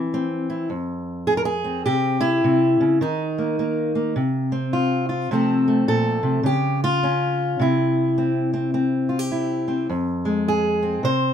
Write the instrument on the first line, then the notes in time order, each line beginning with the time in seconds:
steel-string acoustic guitar
Already playing: E3
0.14 C4
0.50 E4
0.70 F2
1.27 G#4
1.37 A#4
1.45 G#4
1.64 C4
1.86 C3 G4
2.21 E4
2.44 C3
2.81 C#3
3.01 D#3 D#4
3.38 A#3
3.59 A#3
3.95 A#3
4.16 C3
4.52 C4
4.73 F4
5.09 F4
5.31 C3 F3 A3 C4 A4
5.68 A3
5.88 A#2 A4
6.23 C3
6.43 C#3 G4
6.84 F4
7.03 C#4
7.60 C3 E4
8.18 C4
8.54 C4
8.74 C4
9.09 F4
9.19 G4
9.32 E4
9.68 C4
9.89 F2
10.25 G#3
10.48 G#4
10.82 C4
11.03 C3 C5